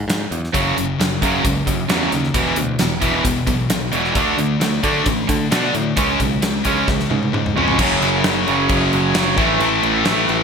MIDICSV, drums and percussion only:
0, 0, Header, 1, 2, 480
1, 0, Start_track
1, 0, Key_signature, 3, "minor"
1, 0, Tempo, 453172
1, 573, Time_signature, 4, 2, 24, 8
1, 11050, End_track
2, 0, Start_track
2, 0, Title_t, "Drums"
2, 101, Note_on_c, 9, 42, 83
2, 107, Note_on_c, 9, 38, 113
2, 207, Note_off_c, 9, 42, 0
2, 213, Note_off_c, 9, 38, 0
2, 338, Note_on_c, 9, 42, 58
2, 444, Note_off_c, 9, 42, 0
2, 463, Note_on_c, 9, 38, 28
2, 568, Note_off_c, 9, 38, 0
2, 575, Note_on_c, 9, 36, 92
2, 580, Note_on_c, 9, 42, 78
2, 681, Note_off_c, 9, 36, 0
2, 686, Note_off_c, 9, 42, 0
2, 824, Note_on_c, 9, 42, 61
2, 930, Note_off_c, 9, 42, 0
2, 1066, Note_on_c, 9, 42, 77
2, 1071, Note_on_c, 9, 38, 93
2, 1172, Note_off_c, 9, 42, 0
2, 1177, Note_off_c, 9, 38, 0
2, 1294, Note_on_c, 9, 36, 80
2, 1303, Note_on_c, 9, 42, 53
2, 1400, Note_off_c, 9, 36, 0
2, 1409, Note_off_c, 9, 42, 0
2, 1532, Note_on_c, 9, 36, 96
2, 1533, Note_on_c, 9, 42, 85
2, 1638, Note_off_c, 9, 36, 0
2, 1639, Note_off_c, 9, 42, 0
2, 1770, Note_on_c, 9, 36, 77
2, 1774, Note_on_c, 9, 42, 67
2, 1876, Note_off_c, 9, 36, 0
2, 1880, Note_off_c, 9, 42, 0
2, 2007, Note_on_c, 9, 42, 89
2, 2012, Note_on_c, 9, 38, 104
2, 2113, Note_off_c, 9, 42, 0
2, 2118, Note_off_c, 9, 38, 0
2, 2248, Note_on_c, 9, 42, 62
2, 2253, Note_on_c, 9, 38, 26
2, 2354, Note_off_c, 9, 42, 0
2, 2359, Note_off_c, 9, 38, 0
2, 2366, Note_on_c, 9, 38, 30
2, 2472, Note_off_c, 9, 38, 0
2, 2482, Note_on_c, 9, 36, 96
2, 2483, Note_on_c, 9, 42, 85
2, 2588, Note_off_c, 9, 36, 0
2, 2589, Note_off_c, 9, 42, 0
2, 2714, Note_on_c, 9, 42, 67
2, 2820, Note_off_c, 9, 42, 0
2, 2954, Note_on_c, 9, 42, 90
2, 2959, Note_on_c, 9, 38, 88
2, 3060, Note_off_c, 9, 42, 0
2, 3065, Note_off_c, 9, 38, 0
2, 3196, Note_on_c, 9, 42, 63
2, 3199, Note_on_c, 9, 36, 73
2, 3302, Note_off_c, 9, 42, 0
2, 3305, Note_off_c, 9, 36, 0
2, 3439, Note_on_c, 9, 36, 93
2, 3443, Note_on_c, 9, 42, 84
2, 3545, Note_off_c, 9, 36, 0
2, 3549, Note_off_c, 9, 42, 0
2, 3677, Note_on_c, 9, 42, 70
2, 3678, Note_on_c, 9, 36, 83
2, 3783, Note_off_c, 9, 42, 0
2, 3784, Note_off_c, 9, 36, 0
2, 3917, Note_on_c, 9, 42, 92
2, 3922, Note_on_c, 9, 38, 99
2, 4023, Note_off_c, 9, 42, 0
2, 4028, Note_off_c, 9, 38, 0
2, 4159, Note_on_c, 9, 42, 61
2, 4265, Note_off_c, 9, 42, 0
2, 4280, Note_on_c, 9, 38, 29
2, 4386, Note_off_c, 9, 38, 0
2, 4399, Note_on_c, 9, 42, 78
2, 4400, Note_on_c, 9, 36, 101
2, 4504, Note_off_c, 9, 42, 0
2, 4506, Note_off_c, 9, 36, 0
2, 4644, Note_on_c, 9, 42, 60
2, 4750, Note_off_c, 9, 42, 0
2, 4885, Note_on_c, 9, 42, 78
2, 4890, Note_on_c, 9, 38, 95
2, 4991, Note_off_c, 9, 42, 0
2, 4996, Note_off_c, 9, 38, 0
2, 5121, Note_on_c, 9, 42, 62
2, 5122, Note_on_c, 9, 36, 71
2, 5227, Note_off_c, 9, 42, 0
2, 5228, Note_off_c, 9, 36, 0
2, 5357, Note_on_c, 9, 42, 71
2, 5362, Note_on_c, 9, 36, 92
2, 5463, Note_off_c, 9, 42, 0
2, 5468, Note_off_c, 9, 36, 0
2, 5602, Note_on_c, 9, 42, 64
2, 5603, Note_on_c, 9, 36, 81
2, 5708, Note_off_c, 9, 42, 0
2, 5709, Note_off_c, 9, 36, 0
2, 5845, Note_on_c, 9, 42, 93
2, 5850, Note_on_c, 9, 38, 108
2, 5950, Note_off_c, 9, 42, 0
2, 5956, Note_off_c, 9, 38, 0
2, 6086, Note_on_c, 9, 42, 60
2, 6192, Note_off_c, 9, 42, 0
2, 6321, Note_on_c, 9, 42, 91
2, 6326, Note_on_c, 9, 36, 105
2, 6427, Note_off_c, 9, 42, 0
2, 6432, Note_off_c, 9, 36, 0
2, 6565, Note_on_c, 9, 36, 76
2, 6568, Note_on_c, 9, 42, 70
2, 6671, Note_off_c, 9, 36, 0
2, 6674, Note_off_c, 9, 42, 0
2, 6805, Note_on_c, 9, 42, 85
2, 6810, Note_on_c, 9, 38, 94
2, 6911, Note_off_c, 9, 42, 0
2, 6916, Note_off_c, 9, 38, 0
2, 7040, Note_on_c, 9, 42, 62
2, 7047, Note_on_c, 9, 36, 71
2, 7146, Note_off_c, 9, 42, 0
2, 7153, Note_off_c, 9, 36, 0
2, 7285, Note_on_c, 9, 38, 54
2, 7287, Note_on_c, 9, 36, 107
2, 7391, Note_off_c, 9, 38, 0
2, 7393, Note_off_c, 9, 36, 0
2, 7408, Note_on_c, 9, 38, 51
2, 7514, Note_off_c, 9, 38, 0
2, 7527, Note_on_c, 9, 48, 67
2, 7633, Note_off_c, 9, 48, 0
2, 7655, Note_on_c, 9, 48, 66
2, 7761, Note_off_c, 9, 48, 0
2, 7777, Note_on_c, 9, 47, 75
2, 7883, Note_off_c, 9, 47, 0
2, 7903, Note_on_c, 9, 45, 74
2, 8009, Note_off_c, 9, 45, 0
2, 8024, Note_on_c, 9, 43, 74
2, 8130, Note_off_c, 9, 43, 0
2, 8132, Note_on_c, 9, 43, 79
2, 8238, Note_off_c, 9, 43, 0
2, 8249, Note_on_c, 9, 49, 105
2, 8249, Note_on_c, 9, 57, 80
2, 8250, Note_on_c, 9, 36, 110
2, 8355, Note_off_c, 9, 49, 0
2, 8355, Note_off_c, 9, 57, 0
2, 8356, Note_off_c, 9, 36, 0
2, 8497, Note_on_c, 9, 57, 58
2, 8603, Note_off_c, 9, 57, 0
2, 8726, Note_on_c, 9, 57, 69
2, 8731, Note_on_c, 9, 38, 109
2, 8832, Note_off_c, 9, 57, 0
2, 8837, Note_off_c, 9, 38, 0
2, 8977, Note_on_c, 9, 57, 60
2, 9083, Note_off_c, 9, 57, 0
2, 9205, Note_on_c, 9, 57, 77
2, 9210, Note_on_c, 9, 36, 102
2, 9311, Note_off_c, 9, 57, 0
2, 9316, Note_off_c, 9, 36, 0
2, 9455, Note_on_c, 9, 57, 62
2, 9561, Note_off_c, 9, 57, 0
2, 9686, Note_on_c, 9, 57, 87
2, 9691, Note_on_c, 9, 38, 115
2, 9792, Note_off_c, 9, 57, 0
2, 9797, Note_off_c, 9, 38, 0
2, 9932, Note_on_c, 9, 36, 107
2, 9933, Note_on_c, 9, 57, 54
2, 10038, Note_off_c, 9, 36, 0
2, 10039, Note_off_c, 9, 57, 0
2, 10172, Note_on_c, 9, 57, 77
2, 10277, Note_off_c, 9, 57, 0
2, 10415, Note_on_c, 9, 57, 68
2, 10521, Note_off_c, 9, 57, 0
2, 10647, Note_on_c, 9, 57, 81
2, 10653, Note_on_c, 9, 38, 113
2, 10753, Note_off_c, 9, 57, 0
2, 10759, Note_off_c, 9, 38, 0
2, 10897, Note_on_c, 9, 57, 60
2, 11003, Note_off_c, 9, 57, 0
2, 11050, End_track
0, 0, End_of_file